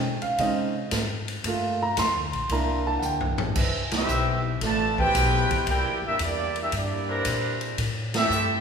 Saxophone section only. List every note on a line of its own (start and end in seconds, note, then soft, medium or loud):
3.55 3.81 G3 medium
3.55 3.80 C4 medium
3.55 3.80 E4 medium
3.55 3.81 B4 loud
4.97 5.09 G3 loud
4.97 5.09 C4 medium
4.97 5.08 E4 medium
4.97 5.09 B4 loud
7.08 7.75 E3 loud
7.08 7.74 C4 loud
7.08 7.74 D4 loud
7.08 7.75 A#4 loud